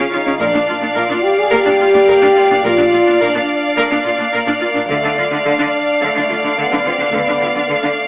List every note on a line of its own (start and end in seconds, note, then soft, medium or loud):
0.00 0.35 C#5 soft
0.00 0.36 F5 soft
0.11 0.18 C#3 soft
0.11 0.39 D#4 medium
0.11 0.18 F4 soft
0.26 0.32 C#3 soft
0.26 0.32 C#4 medium
0.39 0.53 A#1 medium
0.39 0.46 A#2 medium
0.39 0.96 D4 medium
0.39 0.45 A#4 medium
0.39 4.85 D5 soft
0.39 4.85 F5 medium
0.54 0.59 A#2 soft
0.54 0.60 D4 soft
0.68 0.74 A#2 soft
0.68 0.73 F4 soft
0.81 0.88 A#2 soft
0.81 0.87 D4 soft
0.95 1.01 A#2 medium
0.95 1.25 F4 medium
0.95 1.01 A#4 medium
1.10 1.15 A#2 soft
1.10 1.15 D4 soft
1.23 1.38 G4 medium
1.38 1.52 G#4 medium
1.50 1.57 A#2 medium
1.50 2.61 G4 medium
1.50 1.57 A#4 medium
1.65 1.72 A#2 soft
1.65 1.71 D4 soft
1.80 1.86 A#2 soft
1.80 1.86 F4 soft
1.94 1.99 A#2 soft
1.94 1.99 D4 soft
2.08 2.14 A#2 medium
2.08 2.13 A#4 medium
2.22 2.28 A#2 soft
2.22 2.28 D4 medium
2.36 2.42 A#2 soft
2.36 2.42 F4 soft
2.51 2.56 A#2 soft
2.51 2.57 D4 soft
2.64 2.78 A#1 medium
2.64 2.70 A#2 medium
2.64 3.21 F4 medium
2.64 2.71 A#4 medium
2.79 2.84 A#2 soft
2.79 2.85 D4 soft
2.93 2.99 A#2 soft
2.93 2.98 F4 soft
3.07 3.13 A#2 soft
3.07 3.12 D4 soft
3.21 3.27 A#2 medium
3.21 4.34 D4 medium
3.21 3.26 A#4 medium
3.35 3.41 A#2 soft
3.35 3.41 D4 soft
3.77 3.83 A#2 medium
3.77 3.83 A#4 medium
3.91 3.96 A#2 soft
3.91 3.96 D4 soft
4.04 4.10 A#2 soft
4.04 4.10 F4 soft
4.18 4.24 A#2 soft
4.18 4.24 D4 soft
4.32 4.38 A#2 medium
4.32 4.38 A#4 medium
4.47 4.52 A#2 soft
4.47 4.53 D4 soft
4.60 4.66 A#2 soft
4.60 4.87 A#3 medium
4.60 4.66 F4 soft
4.75 4.80 A#2 soft
4.75 4.80 D4 soft
4.89 5.02 D2 medium
4.89 4.95 D3 medium
4.89 5.44 A3 medium
4.89 4.95 A4 medium
4.89 8.08 D5 soft
4.89 8.08 F5 medium
5.03 5.09 D3 soft
5.03 5.09 D4 soft
5.17 5.23 D3 soft
5.17 5.23 F4 soft
5.31 5.37 D3 soft
5.31 5.37 D4 soft
5.45 5.51 D3 medium
5.45 6.01 D4 medium
5.45 5.51 A4 medium
5.58 5.65 D3 soft
5.58 5.64 D4 soft
6.01 6.08 D3 soft
6.01 6.58 A3 medium
6.01 6.07 A4 soft
6.16 6.21 D3 soft
6.16 6.21 D4 soft
6.29 6.36 D3 soft
6.29 6.35 F4 soft
6.43 6.49 D3 soft
6.43 6.49 D4 soft
6.58 6.63 D3 medium
6.58 6.86 B3 medium
6.58 6.63 A4 soft
6.71 6.77 D3 soft
6.71 6.77 D4 soft
6.85 6.91 D3 soft
6.85 7.00 C4 soft
6.85 6.91 F4 soft
6.99 7.05 D3 soft
6.99 7.13 B3 soft
6.99 7.05 D4 soft
7.13 7.27 D2 soft
7.13 7.19 D3 soft
7.13 7.69 B3 medium
7.13 7.19 A4 soft
7.27 7.33 D3 soft
7.27 7.33 D4 soft
7.41 7.47 D3 soft
7.41 7.47 F4 soft
7.55 7.61 D3 soft
7.55 7.61 D4 soft
7.69 7.75 D3 soft
7.69 8.08 A3 soft
7.69 7.75 A4 soft
7.83 7.89 D3 soft
7.83 7.88 D4 soft